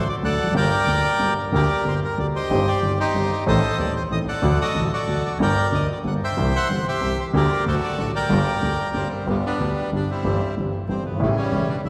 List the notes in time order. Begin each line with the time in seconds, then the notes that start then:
0.09 D5
0.22 D2 D3 F#3 A3 F#4 A4 D5 F#5
0.39 F1
0.44 E2 F2
0.51 G1 F#2 G2 D3 G3 A#3 G4
0.57 A#4 D5 G5
0.87 D2 D3 G3 A#3 G4
1.19 G1 G2 D3 G3 A#3 G4
1.38 A#4
1.52 D2 D3 G3 A#3 G4 A#4 D5
1.85 G1 G2 D3 G3 A#3 G4 C5
2.04 A#4
2.18 D2 D3 G3 A#3 G4 D5
2.36 G4 C5 D#5
2.50 G1 G2 D#3 G3 C4 G4
2.67 G4 D5
2.82 G1 G2 D#3 G3 C4 G4
3.00 D#4 G4 C5
3.14 G1 G2 D#3 G3 C4 G4
3.32 C5
3.47 A1 A2 D#3 A3 C4 A4 C5 D#5
3.79 D#1 D#2 D#3 A3 C4 A4 D5
3.96 C5
4.11 A1 A2 D#3 A3 C4 A4 D#5
4.28 A4 D5 F#5
4.42 D2 D3 F#3 A3 F#4
4.61 F#4 A4 D#5
4.75 A1 A2 D3 F#3 A3 F#4
4.85 D#5
4.93 F#4 A4 D5
5.07 D2 D3 F#3 A3 F#4
5.26 D5
5.39 G1 G2 D3 G3 A#3 G4 A#4 D5 G5
5.72 D2 D3 G3 A#3 G4 D#5
5.92 D5
6.04 G1 G2 D3 G3 A#3 G4 F#5
6.24 C5 E5 G5
6.37 C2 C3 E3 G3 C4 G4
6.56 C5 F#5
6.69 G1 G2 E3 G3 C4 G4
6.88 G4 C5 E5
7.01 C2 C3 E3 G3 C4 G4
7.20 C5
7.33 D2 D3 G3 A#3 G4 A#4 D5
7.65 D2 D3 F#3 A3 F#4 A4 C5
7.83 D5
7.98 A1 A2 D3 F#3 A3 F#4 F#5
8.15 A#4 D5 G5
8.29 G1 G2 D3 G3 A#3 G4
8.61 D2 D3 G3 A#3 G4
8.94 G1 G2 D3 G3 A#3 C4 G4
9.26 G1 G2 D3 G3 B3 G4
9.46 G3 B3 D4
9.60 D2 D3 G3 B3 G4
9.92 G1 G2 D3 G3 B3 D4 G4
10.10 G3 C4 E4
10.24 G1 G2 E3 G3 C4 G4
10.57 G1 G2 E3 G3 C4 G4
10.88 G1 G2 E3 G3 C4 G4
11.04 F#1 G1 B3
11.12 G1 G#1
11.19 A1 A2 C#3 E3 G3 A3 E4
11.37 E3 G3 C#4
11.52 E1 E2 C#3 G3 A3 E4
11.69 D4
11.84 A1 A2 C#3 G3 A3 E4